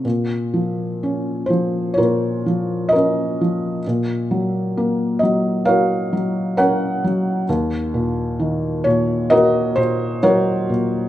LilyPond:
<<
  \new Staff \with { instrumentName = "Felt piano" } { \time 4/4 \key bes \minor \tempo 4 = 66 << { r4. c''8 des''4 ees''4 | r4. ees''8 f''4 ges''4 | r4. des''8 ees''8 c''8 des''4 | } \\ { r2 <f' bes'>4 bes'4 | r2 <bes' des''>4 <bes' des''>4 | r2 <ges' bes'>4 <ges' bes'>4 | } >> }
  \new Staff \with { instrumentName = "Felt piano" } { \clef bass \time 4/4 \key bes \minor bes,8 f8 des'8 f8 bes,8 f8 des'8 f8 | bes,8 ges8 bes8 ges8 ges'8 ges8 des'8 ges8 | ees,8 bes,8 ees8 bes,8 bes8 bes,8 ges8 bes,8 | }
>>